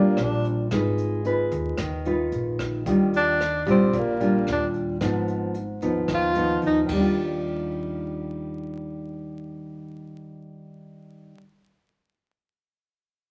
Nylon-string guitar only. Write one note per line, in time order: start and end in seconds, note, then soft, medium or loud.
0.00 0.69 A#2 soft
0.00 0.67 G3 medium
0.00 0.67 D4 medium
0.00 0.68 F4 medium
0.73 1.77 G#3 soft
0.73 1.21 D#4 soft
0.73 1.22 F4 soft
0.73 1.22 B4 medium
1.25 1.79 D#4 medium
1.25 1.79 F4 soft
1.25 1.79 B4 medium
1.79 2.84 D#3 medium
2.06 2.82 D#4 medium
2.06 2.82 F4 medium
2.06 2.83 B4 medium
2.86 3.91 D#3 soft
2.86 3.40 G3 soft
2.86 3.40 D4 soft
2.86 3.40 F4 medium
3.66 4.16 G3 medium
3.66 4.17 D4 medium
3.66 4.17 F4 medium
3.93 4.98 A#2 soft
4.20 4.97 G3 medium
4.20 4.97 D4 medium
4.20 4.97 F4 medium
5.01 6.06 G#2 medium
5.01 5.55 F3 medium
5.01 5.55 B3 soft
5.01 5.55 D#4 soft
5.82 6.32 F3 medium
5.82 6.31 B3 medium
5.82 6.32 D#4 medium
6.09 6.85 D#3 soft
6.36 6.89 F3 medium
6.36 6.89 B3 medium
6.36 6.90 D#4 medium
6.86 11.34 D#3 medium
6.92 11.40 G3 medium
6.97 11.44 D4 medium
7.01 11.49 F4 medium